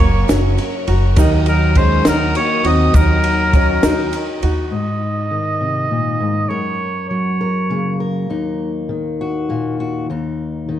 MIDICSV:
0, 0, Header, 1, 10, 480
1, 0, Start_track
1, 0, Key_signature, -6, "minor"
1, 0, Tempo, 594059
1, 946, Time_signature, 6, 3, 24, 8
1, 8722, End_track
2, 0, Start_track
2, 0, Title_t, "String section"
2, 0, Program_c, 0, 48
2, 0, Note_on_c, 0, 70, 88
2, 0, Note_on_c, 0, 73, 75
2, 0, Note_on_c, 0, 78, 69
2, 0, Note_on_c, 0, 85, 87
2, 929, Note_off_c, 0, 73, 0
2, 930, Note_off_c, 0, 85, 0
2, 938, Note_on_c, 0, 75, 81
2, 938, Note_on_c, 0, 87, 95
2, 3782, Note_off_c, 0, 70, 0
2, 3782, Note_off_c, 0, 78, 0
2, 3784, Note_off_c, 0, 75, 0
2, 3784, Note_off_c, 0, 87, 0
2, 8722, End_track
3, 0, Start_track
3, 0, Title_t, "Oboe"
3, 0, Program_c, 1, 68
3, 0, Note_on_c, 1, 73, 96
3, 231, Note_off_c, 1, 73, 0
3, 1200, Note_on_c, 1, 70, 87
3, 1429, Note_on_c, 1, 72, 86
3, 1441, Note_off_c, 1, 70, 0
3, 1664, Note_off_c, 1, 72, 0
3, 1679, Note_on_c, 1, 70, 89
3, 1893, Note_off_c, 1, 70, 0
3, 1908, Note_on_c, 1, 73, 96
3, 2152, Note_on_c, 1, 75, 100
3, 2164, Note_off_c, 1, 73, 0
3, 2383, Note_on_c, 1, 70, 96
3, 2395, Note_off_c, 1, 75, 0
3, 3578, Note_off_c, 1, 70, 0
3, 3810, Note_on_c, 1, 75, 71
3, 5239, Note_on_c, 1, 73, 62
3, 5251, Note_off_c, 1, 75, 0
3, 5718, Note_off_c, 1, 73, 0
3, 5723, Note_on_c, 1, 73, 54
3, 6422, Note_off_c, 1, 73, 0
3, 8722, End_track
4, 0, Start_track
4, 0, Title_t, "Steel-string acoustic guitar"
4, 0, Program_c, 2, 25
4, 0, Note_on_c, 2, 54, 65
4, 0, Note_on_c, 2, 61, 69
4, 5, Note_on_c, 2, 66, 66
4, 10, Note_on_c, 2, 70, 68
4, 217, Note_off_c, 2, 70, 0
4, 223, Note_off_c, 2, 66, 0
4, 226, Note_off_c, 2, 61, 0
4, 226, Note_on_c, 2, 70, 77
4, 228, Note_off_c, 2, 54, 0
4, 232, Note_on_c, 2, 66, 80
4, 236, Note_on_c, 2, 61, 79
4, 241, Note_on_c, 2, 54, 67
4, 456, Note_off_c, 2, 54, 0
4, 465, Note_off_c, 2, 61, 0
4, 466, Note_on_c, 2, 54, 67
4, 467, Note_off_c, 2, 70, 0
4, 470, Note_off_c, 2, 66, 0
4, 475, Note_on_c, 2, 61, 67
4, 479, Note_on_c, 2, 66, 73
4, 488, Note_on_c, 2, 70, 69
4, 698, Note_off_c, 2, 70, 0
4, 706, Note_off_c, 2, 54, 0
4, 708, Note_on_c, 2, 70, 61
4, 710, Note_off_c, 2, 61, 0
4, 710, Note_off_c, 2, 66, 0
4, 719, Note_on_c, 2, 66, 56
4, 728, Note_on_c, 2, 61, 47
4, 946, Note_off_c, 2, 70, 0
4, 946, Note_on_c, 2, 51, 99
4, 948, Note_off_c, 2, 66, 0
4, 950, Note_on_c, 2, 54, 89
4, 952, Note_off_c, 2, 61, 0
4, 955, Note_on_c, 2, 63, 86
4, 958, Note_on_c, 2, 66, 92
4, 962, Note_on_c, 2, 70, 87
4, 1179, Note_off_c, 2, 70, 0
4, 1184, Note_off_c, 2, 51, 0
4, 1187, Note_off_c, 2, 54, 0
4, 1188, Note_off_c, 2, 66, 0
4, 1188, Note_on_c, 2, 70, 50
4, 1189, Note_off_c, 2, 63, 0
4, 1198, Note_on_c, 2, 66, 54
4, 1210, Note_on_c, 2, 63, 49
4, 1425, Note_off_c, 2, 63, 0
4, 1425, Note_off_c, 2, 70, 0
4, 1425, Note_on_c, 2, 54, 61
4, 1430, Note_off_c, 2, 66, 0
4, 1435, Note_on_c, 2, 63, 60
4, 1442, Note_on_c, 2, 66, 66
4, 1448, Note_on_c, 2, 70, 74
4, 1657, Note_off_c, 2, 70, 0
4, 1663, Note_off_c, 2, 54, 0
4, 1663, Note_off_c, 2, 66, 0
4, 1666, Note_on_c, 2, 70, 74
4, 1668, Note_off_c, 2, 63, 0
4, 1673, Note_on_c, 2, 66, 70
4, 1677, Note_on_c, 2, 63, 71
4, 1680, Note_on_c, 2, 54, 70
4, 1681, Note_on_c, 2, 51, 58
4, 1892, Note_off_c, 2, 54, 0
4, 1902, Note_on_c, 2, 54, 62
4, 1903, Note_off_c, 2, 63, 0
4, 1903, Note_off_c, 2, 70, 0
4, 1906, Note_off_c, 2, 66, 0
4, 1910, Note_off_c, 2, 51, 0
4, 1913, Note_on_c, 2, 63, 69
4, 1917, Note_on_c, 2, 66, 65
4, 1923, Note_on_c, 2, 70, 72
4, 2131, Note_off_c, 2, 70, 0
4, 2140, Note_off_c, 2, 54, 0
4, 2141, Note_on_c, 2, 70, 52
4, 2145, Note_off_c, 2, 66, 0
4, 2146, Note_off_c, 2, 63, 0
4, 2155, Note_on_c, 2, 66, 44
4, 2161, Note_on_c, 2, 63, 45
4, 2376, Note_off_c, 2, 63, 0
4, 2378, Note_on_c, 2, 51, 73
4, 2379, Note_off_c, 2, 70, 0
4, 2380, Note_off_c, 2, 66, 0
4, 2381, Note_on_c, 2, 54, 74
4, 2386, Note_on_c, 2, 63, 76
4, 2389, Note_on_c, 2, 66, 76
4, 2392, Note_on_c, 2, 70, 81
4, 2613, Note_off_c, 2, 70, 0
4, 2618, Note_off_c, 2, 51, 0
4, 2619, Note_off_c, 2, 54, 0
4, 2621, Note_off_c, 2, 63, 0
4, 2623, Note_off_c, 2, 66, 0
4, 2623, Note_on_c, 2, 70, 50
4, 2632, Note_on_c, 2, 66, 44
4, 2641, Note_on_c, 2, 63, 47
4, 2853, Note_off_c, 2, 63, 0
4, 2854, Note_on_c, 2, 54, 65
4, 2858, Note_off_c, 2, 66, 0
4, 2860, Note_off_c, 2, 70, 0
4, 2863, Note_on_c, 2, 63, 61
4, 2868, Note_on_c, 2, 66, 65
4, 2873, Note_on_c, 2, 70, 73
4, 3083, Note_off_c, 2, 70, 0
4, 3088, Note_off_c, 2, 66, 0
4, 3092, Note_off_c, 2, 63, 0
4, 3093, Note_on_c, 2, 70, 83
4, 3095, Note_off_c, 2, 54, 0
4, 3098, Note_on_c, 2, 66, 88
4, 3101, Note_on_c, 2, 63, 72
4, 3107, Note_on_c, 2, 51, 72
4, 3107, Note_on_c, 2, 54, 81
4, 3321, Note_off_c, 2, 54, 0
4, 3331, Note_off_c, 2, 63, 0
4, 3331, Note_on_c, 2, 54, 67
4, 3335, Note_off_c, 2, 66, 0
4, 3335, Note_off_c, 2, 70, 0
4, 3341, Note_off_c, 2, 51, 0
4, 3341, Note_on_c, 2, 63, 65
4, 3344, Note_on_c, 2, 66, 68
4, 3350, Note_on_c, 2, 70, 78
4, 3566, Note_off_c, 2, 70, 0
4, 3574, Note_off_c, 2, 54, 0
4, 3576, Note_on_c, 2, 70, 67
4, 3577, Note_off_c, 2, 66, 0
4, 3579, Note_off_c, 2, 63, 0
4, 3586, Note_on_c, 2, 66, 53
4, 3596, Note_on_c, 2, 63, 44
4, 3816, Note_off_c, 2, 70, 0
4, 3821, Note_off_c, 2, 66, 0
4, 3826, Note_off_c, 2, 63, 0
4, 8722, End_track
5, 0, Start_track
5, 0, Title_t, "Upright piano"
5, 0, Program_c, 3, 0
5, 0, Note_on_c, 3, 58, 84
5, 230, Note_off_c, 3, 58, 0
5, 234, Note_on_c, 3, 61, 82
5, 700, Note_off_c, 3, 61, 0
5, 709, Note_on_c, 3, 66, 79
5, 942, Note_off_c, 3, 66, 0
5, 954, Note_on_c, 3, 63, 88
5, 1418, Note_off_c, 3, 63, 0
5, 1429, Note_on_c, 3, 61, 83
5, 1660, Note_off_c, 3, 61, 0
5, 1669, Note_on_c, 3, 63, 83
5, 2134, Note_off_c, 3, 63, 0
5, 2144, Note_on_c, 3, 66, 79
5, 2376, Note_off_c, 3, 66, 0
5, 2387, Note_on_c, 3, 63, 85
5, 2852, Note_off_c, 3, 63, 0
5, 2866, Note_on_c, 3, 61, 81
5, 3097, Note_off_c, 3, 61, 0
5, 3098, Note_on_c, 3, 63, 82
5, 3567, Note_off_c, 3, 63, 0
5, 3577, Note_on_c, 3, 66, 75
5, 3812, Note_off_c, 3, 66, 0
5, 8722, End_track
6, 0, Start_track
6, 0, Title_t, "French horn"
6, 0, Program_c, 4, 60
6, 0, Note_on_c, 4, 58, 81
6, 228, Note_off_c, 4, 58, 0
6, 1197, Note_on_c, 4, 54, 70
6, 1431, Note_on_c, 4, 56, 85
6, 1443, Note_off_c, 4, 54, 0
6, 1666, Note_off_c, 4, 56, 0
6, 1675, Note_on_c, 4, 54, 79
6, 1891, Note_off_c, 4, 54, 0
6, 1910, Note_on_c, 4, 58, 80
6, 2140, Note_on_c, 4, 60, 91
6, 2152, Note_off_c, 4, 58, 0
6, 2374, Note_on_c, 4, 54, 82
6, 2386, Note_off_c, 4, 60, 0
6, 3574, Note_off_c, 4, 54, 0
6, 8722, End_track
7, 0, Start_track
7, 0, Title_t, "Upright piano"
7, 0, Program_c, 5, 0
7, 0, Control_c, 5, 64, 127
7, 0, Note_on_c, 5, 30, 63
7, 0, Note_on_c, 5, 42, 73
7, 0, Note_on_c, 5, 54, 67
7, 0, Note_on_c, 5, 58, 64
7, 0, Note_on_c, 5, 61, 63
7, 0, Note_on_c, 5, 70, 67
7, 0, Note_on_c, 5, 73, 76
7, 918, Note_off_c, 5, 54, 0
7, 920, Note_off_c, 5, 30, 0
7, 920, Note_off_c, 5, 42, 0
7, 920, Note_off_c, 5, 58, 0
7, 924, Note_off_c, 5, 61, 0
7, 928, Note_off_c, 5, 70, 0
7, 930, Note_off_c, 5, 73, 0
7, 940, Note_on_c, 5, 54, 91
7, 947, Note_on_c, 5, 58, 78
7, 951, Note_on_c, 5, 39, 81
7, 951, Note_on_c, 5, 63, 76
7, 954, Note_on_c, 5, 51, 80
7, 957, Control_c, 5, 64, 0
7, 957, Note_on_c, 5, 70, 78
7, 965, Note_on_c, 5, 75, 92
7, 1089, Control_c, 5, 64, 127
7, 2349, Note_off_c, 5, 39, 0
7, 2350, Note_off_c, 5, 51, 0
7, 2384, Note_on_c, 5, 39, 67
7, 2385, Note_on_c, 5, 51, 73
7, 3781, Note_off_c, 5, 54, 0
7, 3785, Note_off_c, 5, 58, 0
7, 3787, Note_off_c, 5, 39, 0
7, 3787, Note_off_c, 5, 51, 0
7, 3787, Note_off_c, 5, 63, 0
7, 3790, Note_off_c, 5, 70, 0
7, 3793, Note_off_c, 5, 75, 0
7, 3827, Control_c, 5, 64, 0
7, 8722, End_track
8, 0, Start_track
8, 0, Title_t, "Steel-string acoustic guitar"
8, 0, Program_c, 6, 25
8, 3805, Note_on_c, 6, 44, 42
8, 3810, Note_on_c, 6, 63, 41
8, 4291, Note_on_c, 6, 51, 43
8, 4531, Note_on_c, 6, 48, 42
8, 4773, Note_off_c, 6, 48, 0
8, 4776, Note_on_c, 6, 46, 39
8, 5002, Note_off_c, 6, 44, 0
8, 5012, Note_on_c, 6, 44, 44
8, 5017, Note_off_c, 6, 46, 0
8, 5227, Note_off_c, 6, 63, 0
8, 5249, Note_off_c, 6, 44, 0
8, 5252, Note_on_c, 6, 42, 48
8, 5256, Note_off_c, 6, 51, 0
8, 5256, Note_on_c, 6, 70, 45
8, 5741, Note_on_c, 6, 54, 41
8, 5981, Note_off_c, 6, 70, 0
8, 5985, Note_on_c, 6, 70, 42
8, 6221, Note_on_c, 6, 49, 41
8, 6226, Note_on_c, 6, 58, 40
8, 6463, Note_off_c, 6, 70, 0
8, 6466, Note_on_c, 6, 70, 43
8, 6672, Note_off_c, 6, 42, 0
8, 6675, Note_off_c, 6, 49, 0
8, 6704, Note_on_c, 6, 39, 49
8, 6710, Note_on_c, 6, 63, 44
8, 7180, Note_off_c, 6, 54, 0
8, 7183, Note_on_c, 6, 51, 43
8, 7438, Note_off_c, 6, 70, 0
8, 7441, Note_on_c, 6, 66, 49
8, 7668, Note_on_c, 6, 46, 40
8, 7670, Note_off_c, 6, 58, 0
8, 7673, Note_on_c, 6, 58, 40
8, 7908, Note_off_c, 6, 66, 0
8, 7918, Note_on_c, 6, 66, 49
8, 8124, Note_off_c, 6, 58, 0
8, 8126, Note_off_c, 6, 66, 0
8, 8150, Note_off_c, 6, 39, 0
8, 8150, Note_off_c, 6, 46, 0
8, 8159, Note_on_c, 6, 39, 55
8, 8161, Note_off_c, 6, 63, 0
8, 8165, Note_on_c, 6, 63, 43
8, 8625, Note_off_c, 6, 51, 0
8, 8634, Note_on_c, 6, 51, 50
8, 8722, Note_off_c, 6, 39, 0
8, 8722, Note_off_c, 6, 51, 0
8, 8722, Note_off_c, 6, 63, 0
8, 8722, End_track
9, 0, Start_track
9, 0, Title_t, "Upright bass"
9, 0, Program_c, 7, 32
9, 0, Note_on_c, 7, 30, 96
9, 199, Note_off_c, 7, 30, 0
9, 236, Note_on_c, 7, 30, 93
9, 450, Note_off_c, 7, 30, 0
9, 709, Note_on_c, 7, 30, 93
9, 925, Note_off_c, 7, 30, 0
9, 944, Note_on_c, 7, 39, 104
9, 1628, Note_off_c, 7, 39, 0
9, 1663, Note_on_c, 7, 39, 95
9, 1879, Note_off_c, 7, 39, 0
9, 2140, Note_on_c, 7, 39, 90
9, 2357, Note_off_c, 7, 39, 0
9, 2377, Note_on_c, 7, 39, 102
9, 3064, Note_off_c, 7, 39, 0
9, 3098, Note_on_c, 7, 39, 88
9, 3315, Note_off_c, 7, 39, 0
9, 3577, Note_on_c, 7, 39, 86
9, 3795, Note_off_c, 7, 39, 0
9, 8722, End_track
10, 0, Start_track
10, 0, Title_t, "Drums"
10, 0, Note_on_c, 9, 36, 90
10, 0, Note_on_c, 9, 51, 64
10, 77, Note_off_c, 9, 36, 0
10, 77, Note_off_c, 9, 51, 0
10, 236, Note_on_c, 9, 38, 101
10, 236, Note_on_c, 9, 51, 76
10, 239, Note_on_c, 9, 82, 87
10, 317, Note_off_c, 9, 38, 0
10, 317, Note_off_c, 9, 51, 0
10, 319, Note_off_c, 9, 82, 0
10, 471, Note_on_c, 9, 51, 57
10, 551, Note_off_c, 9, 51, 0
10, 707, Note_on_c, 9, 51, 63
10, 788, Note_off_c, 9, 51, 0
10, 940, Note_on_c, 9, 51, 90
10, 947, Note_on_c, 9, 36, 115
10, 954, Note_on_c, 9, 82, 86
10, 1021, Note_off_c, 9, 51, 0
10, 1028, Note_off_c, 9, 36, 0
10, 1035, Note_off_c, 9, 82, 0
10, 1179, Note_on_c, 9, 51, 68
10, 1193, Note_on_c, 9, 82, 27
10, 1260, Note_off_c, 9, 51, 0
10, 1274, Note_off_c, 9, 82, 0
10, 1416, Note_on_c, 9, 51, 67
10, 1422, Note_on_c, 9, 36, 83
10, 1497, Note_off_c, 9, 51, 0
10, 1503, Note_off_c, 9, 36, 0
10, 1657, Note_on_c, 9, 38, 116
10, 1657, Note_on_c, 9, 51, 82
10, 1668, Note_on_c, 9, 82, 90
10, 1737, Note_off_c, 9, 38, 0
10, 1737, Note_off_c, 9, 51, 0
10, 1749, Note_off_c, 9, 82, 0
10, 1899, Note_on_c, 9, 51, 64
10, 1980, Note_off_c, 9, 51, 0
10, 2137, Note_on_c, 9, 51, 68
10, 2218, Note_off_c, 9, 51, 0
10, 2374, Note_on_c, 9, 51, 90
10, 2379, Note_on_c, 9, 36, 112
10, 2387, Note_on_c, 9, 82, 102
10, 2455, Note_off_c, 9, 51, 0
10, 2460, Note_off_c, 9, 36, 0
10, 2467, Note_off_c, 9, 82, 0
10, 2615, Note_on_c, 9, 51, 75
10, 2696, Note_off_c, 9, 51, 0
10, 2855, Note_on_c, 9, 51, 67
10, 2857, Note_on_c, 9, 36, 89
10, 2860, Note_on_c, 9, 82, 35
10, 2936, Note_off_c, 9, 51, 0
10, 2937, Note_off_c, 9, 36, 0
10, 2940, Note_off_c, 9, 82, 0
10, 3095, Note_on_c, 9, 38, 113
10, 3095, Note_on_c, 9, 51, 92
10, 3099, Note_on_c, 9, 82, 102
10, 3176, Note_off_c, 9, 38, 0
10, 3176, Note_off_c, 9, 51, 0
10, 3180, Note_off_c, 9, 82, 0
10, 3335, Note_on_c, 9, 51, 62
10, 3337, Note_on_c, 9, 82, 30
10, 3415, Note_off_c, 9, 51, 0
10, 3418, Note_off_c, 9, 82, 0
10, 3576, Note_on_c, 9, 51, 64
10, 3657, Note_off_c, 9, 51, 0
10, 8722, End_track
0, 0, End_of_file